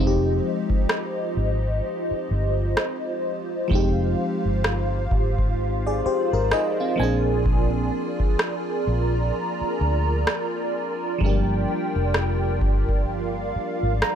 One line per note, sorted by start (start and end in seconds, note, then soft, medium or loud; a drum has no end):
0.00 0.39 F1 loud
0.00 3.65 F3 medium
0.00 3.66 G#3 medium
0.00 3.67 C4 medium
0.00 3.68 D#4 medium
0.00 14.15 F4 medium
0.00 0.06 F4 medium
0.00 6.95 C5 medium
0.00 3.67 D#5 medium
0.07 3.72 G4 medium
0.70 kick medium
0.89 cross-stick loud
1.37 1.80 G#1 medium
2.11 muted fingered electric bass stroke soft
2.31 2.73 G1 medium
2.77 cross-stick loud
3.68 4.14 F1 medium
3.68 6.93 F3 medium
3.68 6.94 G#3 medium
3.68 5.55 C4 medium
3.68 6.96 F5 medium
3.68 kick loud
3.73 5.56 D#4 medium
3.73 5.57 G4 medium
4.45 5.08 G1 medium
4.64 cross-stick loud
5.11 6.01 G#1 medium
5.11 kick loud
5.38 kick medium
5.87 6.05 G#4 medium
5.87 6.05 D5 medium
6.06 6.32 G4 medium
6.06 6.31 C5 medium
6.06 muted fingered electric bass stroke soft
6.33 6.51 G#1 medium
6.33 6.52 F4 medium
6.33 6.52 A#4 medium
6.51 6.79 D#4 medium
6.51 6.78 G#4 medium
6.51 6.96 D#5 medium
6.51 cross-stick loud
6.80 6.98 C4 medium
6.80 7.24 F4 medium
6.96 7.89 A#1 medium
6.96 10.68 F3 medium
6.96 10.69 A#3 medium
6.96 10.70 C4 medium
6.96 14.15 A#4 medium
6.96 14.15 D5 medium
6.96 7.43 G#5 medium
7.01 10.71 D4 medium
7.01 10.72 G#4 medium
7.46 kick loud
8.20 kick medium
8.39 cross-stick loud
8.86 9.30 A#1 medium
8.86 11.19 A#5 medium
9.61 muted fingered electric bass stroke soft
9.81 10.23 D2 medium
10.27 cross-stick loud
11.18 11.64 G1 loud
11.18 14.15 F3 medium
11.18 14.15 G3 medium
11.18 11.29 G#3 soft
11.18 13.07 G5 medium
11.18 kick loud
11.24 14.15 D4 medium
11.24 14.15 G4 medium
11.29 14.15 A#3 medium
11.96 12.62 F1 medium
12.14 cross-stick loud
12.61 13.51 G1 medium
12.61 kick loud
12.89 kick medium
13.09 14.15 F5 medium
13.56 muted fingered electric bass stroke soft
13.83 14.01 G#1 medium
14.02 14.15 A#5 medium
14.02 cross-stick loud